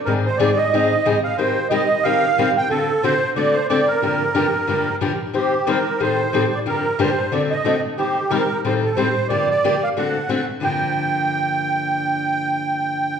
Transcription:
X:1
M:4/4
L:1/8
Q:"Swing" 1/4=182
K:Gm
V:1 name="Accordion"
B c d e4 f | c2 e2 f3 g | A2 c2 d c d B- | B6 z2 |
G2 B2 c3 d | B2 c2 d e2 z | G2 B2 c A c2 | d d2 f ^f3 z |
g8- | g8 |]
V:2 name="Steel-string acoustic guitar"
[_A,,E,G,CE_A] z [A,,E,G,CEA] z [A,,E,G,CEA] z [A,,E,G,CEA] z | [E,G,CGB] z [E,G,CGB] z [E,G,CGB] z [E,G,CGB] z | [D,A,C^FA] z [D,A,CFA] z [D,A,CFA] z [D,A,CFA] z | [G,,D,F,B,DG] z [G,,D,F,B,DG] z [G,,D,F,B,DG] z [G,,D,F,B,DG] z |
[E,G,CGc] z [E,G,CGc] z [A,,E,G,CGA] z [A,,E,G,CGA] z | [G,,D,F,B,DG] z [G,,D,F,B,DG] z [D,A,C^FA] z [D,A,CFA] z | [E,G,CGc] z [E,G,CGc] z [A,,E,G,CGA] z [A,,E,G,CGA] z | [G,,D,F,B,DG] z [G,,D,F,B,DG] z [D,A,C^FA] z [D,A,CFA] z |
[G,,D,F,B,DG]8- | [G,,D,F,B,DG]8 |]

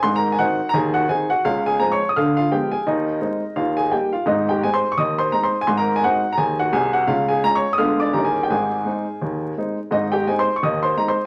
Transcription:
X:1
M:4/4
L:1/16
Q:"Swing" 1/4=170
K:Ab
V:1 name="Upright piano"
c' [Bb]2 a [_G_g]3 b [Aa]2 [Gg]2 [Aa]2 [Gg]2 | [Ff]2 [Aa]2 b [dd']2 e' [ff']2 [Ff]2 [Gg]2 [Aa]2 | [Ee]8 [Ff]2 [Aa]2 [Gg]2 [Ff]2 | [Ee]2 [Gg]2 a [cc']2 d' [ee']2 [cc']2 b [cc']2 a |
c' [Bb]2 a [_G_g]3 b [Aa]2 [Gg]2 [Aa]2 [Gg]2 | [Ff]2 [Aa]2 b [dd']2 e' [ff']2 [=d=d']2 b [Aa]2 g | [Aa]12- [Aa]2 z2 | [Ee]2 [Gg]2 a [cc']2 d' [ee']2 [cc']2 b [cc']2 z |]
V:2 name="Upright piano" clef=bass
[A,,,A,,]4 [E,CE]4 [E,,E,]4 [E,CE]4 | [D,,D,]4 [F,A,C]4 [=D,,=D,]4 [F,A,=B,]4 | [E,,E,]4 [A,CE]4 [E,,E,]4 [G,B,E]4 | [A,,,A,,]4 [A,CE]4 [E,,E,]4 [A,CE]4 |
[A,,,A,,]4 [A,CE]4 [E,,E,]4 [C,,C,]4 | [D,,D,]4 [A,DF]4 [=D,,=D,A,=B,F]4 [E,,E,G,_D_F]4 | [A,,,A,,]4 [A,CE]4 [E,,E,]4 [A,CE]4 | [A,,,A,,]4 [A,CE]4 [E,,E,]4 [A,CE]4 |]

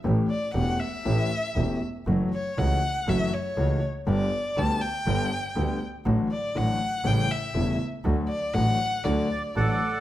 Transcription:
X:1
M:4/4
L:1/8
Q:1/4=120
K:D
V:1 name="Violin"
z d f e4 z | z c f2 e c2 z | d2 a g4 z | z d f2 g e2 z |
z d f2 d2 z2 |]
V:2 name="Bandoneon"
z8 | z8 | z8 | z8 |
z4 z d [Adf]2 |]
V:3 name="Grand piano" clef=bass
[A,,,A,,E,A,CG] z [E,,,E,,E,A,CG] z [A,,,A,,E,A,CG] z [E,,,E,,E,A,CG] z | [F,,E,F,A,CF] z [C,,C,E,A,CF] z [F,,E,F,A,CF] z [C,,C,E,A,CF] z | [G,,,G,,D,G,B,G] z [D,,D,G,B,G] z [G,,,G,,D,G,B,G] z [D,,D,G,B,G] z | [A,,,A,,D,F,A,F] z [A,,,A,,D,F,A,F] z [A,,,A,,C,G,A,E] z [E,,,E,,C,G,A,E] z |
[D,,D,F,A,F] z [A,,,A,,D,F,A,F] z [D,,D,F,A,F] z [A,,,A,,D,F,A,F] z |]
V:4 name="Double bass" clef=bass
A,,, z E,,, z A,,, z E,,, z | F,,, z C,, z F,,, z C,, z | G,,, z D,, z G,,, z D,, z | A,,, z A,,, z A,,, z E,,, z |
D,, z A,,, z D,, z A,,, z |]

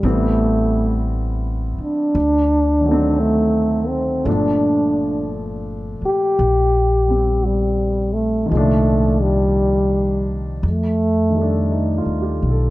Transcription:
X:1
M:4/4
L:1/16
Q:"Swing" 1/4=57
K:Gm
V:1 name="Grand piano"
z16 | z16 | z12 E F G A |]
V:2 name="Grand piano" clef=bass
[=E,G,=B,C]8 z2 [_E,^F,A,C]6 | [B,,F,A,D]8- [B,,F,A,D]2 [G,C]6 | [B,,E,F,D]8 z2 [E,G,A,D]6 |]
V:3 name="Trombone"
A,4 z2 D6 A,2 C2 | D4 z2 G6 G,2 A,2 | A,2 G,4- G, z A,6 z2 |]
V:4 name="Upright bass" clef=bass
A,,,6 z2 D,,8 | G,,,6 z2 B,,,8 | C,,8 F,,4- (3F,,2 E,,2 _C,,2 |]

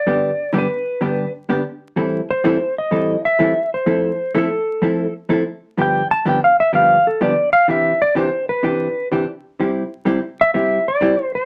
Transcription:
X:1
M:4/4
L:1/8
Q:"Swing" 1/4=126
K:C
V:1 name="Electric slide guitar"
d2 B3 z3 | z c2 _e2 =e2 c- | c2 A3 z3 | g a (3g f e f A d f |
e d c B3 z2 | z3 e e d2 c |]
V:2 name="Hollow-body jazz guitar"
[G,,D,G,B,DG] z [G,,D,G,B,DG] z [G,,D,G,B,DG] z [G,,D,G,B,DG] z | [A,,E,G,CEA] z [A,,E,G,CEA] z [A,,E,G,CEA] z [A,,E,G,CEA] z | [F,A,CEA] z [F,A,CEA] z [F,A,CEA] z [F,A,CEA] z | [G,,D,F,B,DG] z [G,,D,F,B,DG] z [G,,D,F,B,DG] z [G,,D,F,B,DG] z |
[C,E,DG] z [C,E,DG] z [C,E,DG] z [C,E,DG] z | [C,G,CEG] z [C,G,CEG] z [C,G,CEG] z [C,G,CEG] z |]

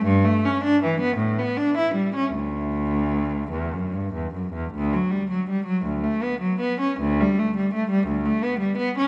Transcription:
X:1
M:6/8
L:1/16
Q:3/8=53
K:D
V:1 name="Cello" clef=bass
G,, A, C D E, B, A,, B, D E G, C | D,,6 E,, F,, G,, E,, F,, E,, | D,, F, G, F, G, F, D,, A, B, F, B, C | D,, G, A, G, A, G, D,, A, B, G, B, C |]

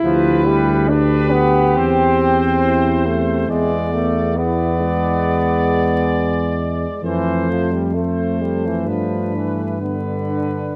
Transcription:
X:1
M:4/4
L:1/16
Q:1/4=68
K:Gmix
V:1 name="Trumpet section"
B4 B4 c8 | d4 d12 | c4 c4 B4 B4 |]
V:2 name="Euphonium"
G4 G4 G8 | ^G4 G12 | A4 A4 D4 D4 |]
V:3 name="French horn section"
E4 G8 E2 C2 | B,4 E2 ^G,8- G,2 | A,12 B,2 D2 |]
V:4 name="Trombone" clef=bass
F,2 G,2 D2 B,2 C6 A,2 | ^G,2 A,2 B,8- B,3 z | E,2 F, G, A,2 G, E, F,2 E,2 D,4 |]
V:5 name="Tuba" clef=bass
D,,8 E,,8 | E,,16 | F,,8 G,,8 |]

